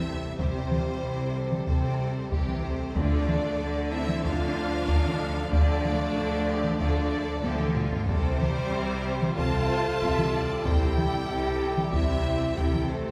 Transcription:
Already playing: C2 C3 G3 C4 E4 G4 A4 E5, impact
0.36 C2 C3 G3 C4 G4 C5, taiko
0.70 F4, taiko mid
1.01 C2 C3 E4
1.33 A4
1.52 taiko mid
1.66 C2 C3 G3 C4 C5, taiko
2.30 C2 C3 E3 G3 G4, taiko
2.48 taiko mid
2.62 A3 C4 C5
2.94 D2 D3 F3 A3 D4 F4 D5, taiko
3.29 taiko mid
3.58 D2 D3 A4
3.91 C4 E4 E5
4.09 taiko mid
4.23 D2 D3 D4 F4 A4 F5, taiko
4.54 C5
4.85 D2 D3 A#4, taiko
5.05 taiko mid
5.17 A4
5.51 D2 D3 A3 D4 G4 D5, taiko
5.82 F4, taiko mid
6.16 D2 D3 A4
6.47 G4
6.64 taiko mid
6.78 D2 D3 A3 D4 F4 D5, taiko
7.12 A4
7.42 D2 D3 F3 A3 G4 A4, taiko high
7.60 taiko mid
7.76 F4, taiko low-mid
7.92 taiko low
8.05 C2 C3 G3 C4 G4 A4 C5, taiko
8.39 G4, taiko mid
8.71 C2 C3
9.23 taiko mid
9.35 C2 C3 F4 A4 C5 A5, taiko
10.01 C2 C3 E5, taiko
10.18 taiko mid
10.33 D5
10.64 C2 C3 E4 G4 C5 G5, taiko
10.97 A4, taiko mid
11.29 C2 C3
11.77 taiko mid
11.92 C2 C3 C4 E4 G4 E5, taiko
12.56 C2 C3 E4 G4 A4 G5, taiko
12.74 taiko mid
12.88 A3 C4 C5

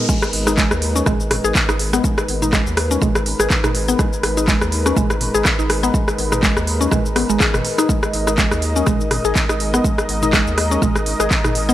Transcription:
0.09 G#3 D#4 A#4 B4, kick, crash, cabasa
0.22 cross-stick, cabasa
0.33 G#1, open hi-hat
0.47 D#4, cross-stick, cabasa
0.58 G#3, kick, clap, cabasa
0.71 D#2, cross-stick, cabasa
0.82 open hi-hat
0.96 C#4, cabasa
1.06 G#1 G#3, kick, cross-stick, mid tom, cabasa
1.20 cabasa
1.31 cross-stick, mid tom, open hi-hat
1.44 G#1 G#4, cabasa
1.55 kick, clap, cabasa
1.69 G#1 D#4, cross-stick, cabasa
1.79 open hi-hat
1.93 B3, cross-stick, cabasa
2.04 G#3, kick, cabasa
2.18 cross-stick, cabasa
2.28 G#1, open hi-hat
2.42 D#4, mid tom, cabasa
2.53 G#3, kick, cross-stick, clap, cabasa
2.67 D#2, cabasa
2.77 cross-stick, open hi-hat
2.91 C#4, cabasa
3.02 G#1 G#3, kick, mid tom, cabasa
3.15 cross-stick, cabasa
3.26 open hi-hat
3.40 G#1 G#4, cross-stick, cabasa
3.50 kick, clap, cabasa
3.64 G#1 D#4, cross-stick, mid tom, cabasa
3.75 open hi-hat
3.88 B3, cabasa
3.99 G#3, kick, cross-stick, cabasa
4.13 cabasa
4.23 G#1, cross-stick, open hi-hat
4.37 D#4, cabasa
4.48 G#3, kick, clap, cabasa
4.61 D#2, cross-stick, cabasa
4.72 open hi-hat
4.86 C#4, cross-stick, cabasa
4.97 G#1 G#3, kick, mid tom, cabasa
5.10 cross-stick, cabasa
5.21 mid tom, open hi-hat
5.35 G#1 G#4, cabasa
5.45 kick, cross-stick, clap, cabasa
5.59 G#1 D#4, cabasa
5.70 cross-stick, open hi-hat
5.83 B3, cabasa
5.94 G#3, kick, cabasa
6.08 cross-stick, cabasa
6.18 G#1, open hi-hat
6.32 D#4, cross-stick, mid tom, cabasa
6.43 G#3, kick, clap, cabasa
6.57 D#2, cross-stick, cabasa
6.67 open hi-hat
6.81 C#4, cabasa
6.91 G#1 G#3, kick, cross-stick, mid tom, cabasa
7.06 cabasa
7.16 B3, cross-stick, open hi-hat
7.30 G#1 G#3, cabasa
7.40 G#4, kick, clap, cabasa
7.54 F#1 D#3, cross-stick, mid tom, cabasa
7.65 open hi-hat
7.78 D#4, cross-stick, cabasa
7.89 G#3 D#5, kick, cabasa
8.03 cross-stick, cabasa
8.13 G#1, open hi-hat
8.27 D#4, cross-stick, cabasa
8.38 G#3, kick, clap, cabasa
8.51 D#2, cross-stick, cabasa
8.62 open hi-hat
8.76 C#4, cabasa
8.86 G#1 G#3, kick, cross-stick, mid tom, cabasa
9.01 cabasa
9.11 cross-stick, mid tom, open hi-hat
9.25 G#1 G#4, cabasa
9.36 kick, clap, cabasa
9.49 G#1 D#4, cross-stick, cabasa
9.60 open hi-hat
9.74 B3, cross-stick, cabasa
9.84 G#3, kick, cabasa
9.98 cross-stick, cabasa
10.09 G#1, open hi-hat
10.22 D#4, mid tom, cabasa
10.33 G#3, kick, cross-stick, clap, cabasa
10.47 D#2, cabasa
10.58 cross-stick, open hi-hat
10.71 C#4, cabasa
10.82 G#1 G#3, kick, mid tom, cabasa
10.96 cross-stick, cabasa
11.06 open hi-hat
11.20 G#1 G#4, cross-stick, cabasa
11.31 kick, clap, cabasa
11.44 G#1 D#4, cross-stick, mid tom, cabasa
11.55 open hi-hat
11.69 B3, cabasa

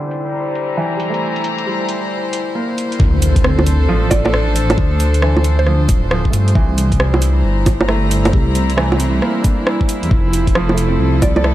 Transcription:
Already playing: D3 G3 D4 E4 C5
0.11 closed hi-hat, cabasa
0.29 A#5
0.55 closed hi-hat, cabasa
0.77 E3
0.97 G3, closed hi-hat, cabasa
1.10 A3
1.14 closed hi-hat
1.36 closed hi-hat
1.44 closed hi-hat, cabasa
1.58 closed hi-hat
1.67 G3
1.89 closed hi-hat, cabasa
2.33 closed hi-hat, cabasa
2.55 A#3
2.78 closed hi-hat, cabasa
2.92 closed hi-hat
3.00 D2, kick, impact
3.22 A4, closed hi-hat, cabasa
3.31 D4
3.36 kick, closed hi-hat
3.44 C4, cross-stick
3.59 low bongo
3.67 closed hi-hat, cabasa
3.89 A1 F3
4.11 D5, kick, closed hi-hat, low bongo, cabasa
4.25 D5, low bongo
4.34 cross-stick
4.56 closed hi-hat, cabasa
4.70 closed hi-hat, low bongo
4.78 D2, kick
5.00 closed hi-hat, cabasa
5.14 closed hi-hat
5.22 E3, cross-stick
5.37 low bongo
5.44 closed hi-hat, cabasa
5.59 C5
5.66 F3, cross-stick
5.89 D1, kick, closed hi-hat, cabasa
6.11 F3, cross-stick
6.25 kick
6.30 G2 A3, closed hi-hat, cabasa
6.48 closed hi-hat
6.55 C2 E3 G3, kick
6.78 closed hi-hat, cabasa
6.92 kick, closed hi-hat
6.99 G3 E4, cross-stick
7.14 low bongo
7.22 closed hi-hat, cabasa
7.34 A#5
7.44 G1
7.66 kick, closed hi-hat, low bongo, cabasa
7.81 low bongo
7.89 A3, cross-stick
8.11 closed hi-hat, cabasa
8.25 closed hi-hat, low bongo
8.33 C2 G3, kick
8.55 closed hi-hat, cabasa
8.70 closed hi-hat
8.77 E3 A3, cross-stick
8.92 low bongo
8.97 C4, closed hi-hat, cabasa
9.22 A#3, cross-stick
9.42 D4, kick, closed hi-hat, cabasa
9.67 cross-stick
9.81 kick
9.89 closed hi-hat, cabasa
10.03 E2, closed hi-hat
10.11 F1 F3, kick
10.33 closed hi-hat, cabasa
10.47 kick, closed hi-hat
10.55 F3, cross-stick
10.61 A4
10.69 low bongo
10.74 A3, closed hi-hat, cabasa
10.88 C4
11.00 C2
11.22 D5, kick, closed hi-hat, low bongo, cabasa
11.36 D5, low bongo
11.44 A3, cross-stick

